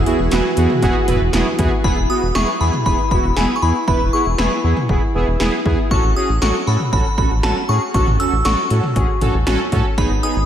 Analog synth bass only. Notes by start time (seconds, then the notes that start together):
0.19 E1
0.32 E1
0.57 E2
0.83 E1
1.08 E1
1.21 E1
1.33 E1
1.59 E2
1.84 E1
1.97 E1
2.22 E1
2.35 E1
2.60 E2
2.86 E1
3.11 E1
3.24 E1
3.37 E1
3.62 E2
3.88 E1
4.00 E1
4.26 E1
4.38 E1
4.64 E2
4.89 E1
5.15 E1
5.27 E1
5.40 E1
5.66 E2
5.91 A1
6.04 A1
6.29 A1
6.42 A1
6.67 A2
6.93 A1
7.18 A1
7.31 A1
7.44 A1
7.69 A2
7.94 A1
8.07 A1
8.32 A1
8.45 A1
8.71 A2
8.96 A1
9.21 A1
9.34 A1
9.47 A1
9.72 A2
9.98 G#1
10.11 G#1
10.36 G#1